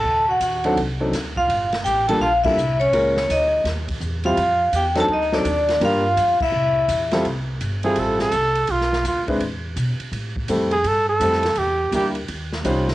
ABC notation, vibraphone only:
X:1
M:4/4
L:1/8
Q:"Swing" 1/4=167
K:F
V:1 name="Vibraphone"
a ^f f2 z3 =f- | f z g a f e2 _d- | _d d _e2 z3 f- | f2 g a _e d3 |
f3 e4 z | z8 | z8 | z8 |
z8 |]